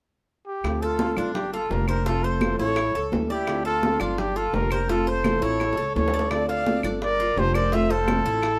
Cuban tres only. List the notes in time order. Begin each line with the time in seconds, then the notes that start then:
0.82 A4
1.18 D4
1.54 F4
1.89 C5
2.06 F4
2.24 C5
2.59 E4
2.95 A4
3.30 D5
3.65 A4
4.01 D4
4.36 F4
4.72 C5
4.89 F4
5.07 C5
5.42 E4
5.77 A4
6.14 D5
6.49 A4
6.84 D4
7.20 F4
7.55 C5
7.73 F4
7.90 C5
8.26 E4